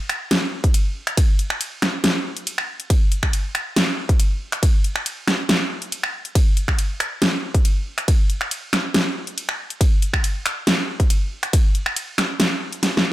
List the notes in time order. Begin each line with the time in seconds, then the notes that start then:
0.09 finger snap, closed hi-hat
0.31 snare, closed hi-hat, ride
0.64 kick, closed hi-hat
0.74 closed hi-hat, ride
1.07 finger snap, closed hi-hat
1.17 kick, closed hi-hat, ride
1.39 closed hi-hat
1.50 finger snap
1.61 closed hi-hat, ride
1.82 finger snap, snare, closed hi-hat
2.04 snare, closed hi-hat, ride
2.37 closed hi-hat
2.47 closed hi-hat, ride
2.58 finger snap
2.80 closed hi-hat
2.90 kick, closed hi-hat, ride
3.12 closed hi-hat
3.23 finger snap, kick
3.33 closed hi-hat, ride
3.55 finger snap, closed hi-hat
3.76 snare, closed hi-hat, ride
4.09 kick, closed hi-hat
4.20 closed hi-hat, ride
4.52 finger snap, closed hi-hat
4.63 kick, closed hi-hat, ride
4.84 closed hi-hat
4.96 finger snap
5.06 closed hi-hat, ride
5.28 finger snap, snare, closed hi-hat
5.49 snare, closed hi-hat, ride
5.82 closed hi-hat
5.92 closed hi-hat, ride
6.03 finger snap
6.25 closed hi-hat
6.35 kick, closed hi-hat, ride
6.57 closed hi-hat
6.68 finger snap, kick
6.79 closed hi-hat, ride
7.00 finger snap, closed hi-hat
7.22 snare, closed hi-hat, ride
7.54 kick, closed hi-hat
7.65 closed hi-hat, ride
7.98 finger snap, closed hi-hat
8.08 kick, closed hi-hat, ride
8.30 closed hi-hat
8.41 finger snap
8.51 closed hi-hat, ride
8.73 finger snap, snare, closed hi-hat
8.94 snare, closed hi-hat, ride
9.27 closed hi-hat
9.38 closed hi-hat, ride
9.49 finger snap
9.70 closed hi-hat
9.81 kick, closed hi-hat, ride
10.02 closed hi-hat
10.13 finger snap, kick
10.24 closed hi-hat, ride
10.46 finger snap, closed hi-hat
10.67 snare, closed hi-hat, ride
11.00 kick, closed hi-hat
11.10 closed hi-hat, ride
11.43 finger snap, closed hi-hat
11.53 kick, closed hi-hat, ride
11.75 closed hi-hat
11.86 finger snap
11.96 closed hi-hat, ride
12.18 finger snap, snare, closed hi-hat
12.40 snare, closed hi-hat, ride
12.73 closed hi-hat
12.83 snare, closed hi-hat, ride
12.97 snare